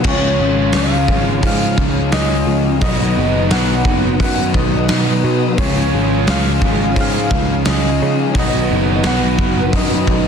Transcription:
0.03 C#2 C#3 F3 G#3 C#4 F4 G#4 C#5 F5 D#6, kick, crash
0.08 C#5
0.39 G#1 G#3
0.72 C#2 F3 G#3 C#4 F4, snare, open hi-hat
0.77 G#4 F5
1.08 G#1 G#3, kick
1.41 G#2 C#3 F3 G#3 C#4 F4 G#4, kick, open hi-hat
1.47 F5
1.77 C#2 D#4, kick
2.11 C#2 G#3 C#4 F4 G#4 D#5, snare, open hi-hat
2.47 C#2 F3
2.81 B1 B2 D#3 F#3 B3 D#4 F#4 B4 D#5 F#5, kick, open hi-hat
3.17 F#1 B3
3.50 B1 F#3 B3 D#4 B4 F#5, snare, open hi-hat
3.85 F#1 B3, kick
4.19 F#2 B2 D#3 F#3 B3 D#4 B4 F#5, kick, open hi-hat
4.54 B1 D#4 D#5, kick
4.88 B1 F#3 B3 D#4 B4, snare, open hi-hat
5.24 B2 F#3
5.57 C#2 C#3 F3 G#3 C#4 F4 G#4 C#5 F5, kick, open hi-hat
5.93 G#1 G#3
6.27 C#2 F3 G#3 C#4 F4 G#4 F5, snare, open hi-hat
6.62 G#1 G#3, kick
6.96 G#2 C#3 F3 G#3 C#4 F4 G#4, kick, open hi-hat
7.01 F5
7.31 C#2 D#4, kick
7.65 C#2 G#3 C#4 F4 G#4, snare, open hi-hat
7.69 D#5
8.00 C#3 F3
8.33 B1 B2 D#3 F#3 B3 D#4 F#4 B4 F#5, kick, open hi-hat
8.39 D#5
8.70 F#1 B3
9.03 B1 F#3 B3 D#4 B4 F#5, snare, open hi-hat
9.38 F#1 B3, kick
9.72 F#2 B2 D#3 F#3 B3 D#4 B4 D#5, kick, open hi-hat
10.07 B1 D#4, kick

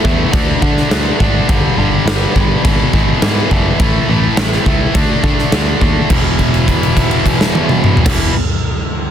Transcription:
0.04 E2 A2 E3 A3, kick
0.32 D2 D3 A3 D4, kick, crash
0.62 D3 A3 D4, kick
0.77 snare
0.89 D2 D3 A3 D4, snare, crash
1.19 G#1 D3 A3 D4, kick
1.47 G1 G2 D3 G3, kick, crash
1.77 G1 G2 D3 G3
2.05 G1 G2 D3 G3, snare, crash
2.34 G1 G2 D3 G3, kick
2.63 G#1 E2 B2 E3, kick, crash
2.93 G#1 E2 B2 E3, kick
3.22 E2 G#2 B2 E3, snare, crash
3.51 F#1 E2 B2 E3, kick
3.80 A1 A2 E3 A3, kick, crash
4.09 A1 A2 E3 A3
4.37 A1 A2 E3 A3, snare, crash
4.53 snare
4.66 C#2 A2 E3 A3, kick
4.95 D2 D3 A3 D4, kick, crash
5.23 D3 A3 D4, kick
5.39 snare
5.52 D2 D3 A3 D4, snare, crash
5.81 D#2 D3 A3 D4, kick
6.10 E1 E2 B2, kick, crash
6.14 E3
6.39 kick, crash
6.54 crash
6.68 kick, crash
6.83 crash
6.97 kick, crash
7.11 crash
7.26 kick, crash
7.41 snare
7.55 high tom
7.69 mid tom
7.84 mid tom
7.97 floor tom
8.04 E1 E2 B2, kick, snare, crash
8.09 E3

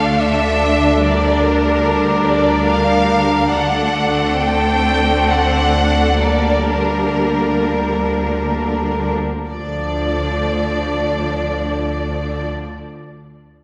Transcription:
Already playing: D2 D3 A3 D4 A4 F5
0.19 E5
1.02 G3 A#4 D5
1.45 A#4
2.26 D5
2.67 F5
3.50 D2 D3 A3 D4 A4 F#5
4.37 C4 G5
5.27 F#5
6.19 G3 A#3 A#4 D5
6.72 A#4
9.49 D2 D3 F3 A3 D4 D5

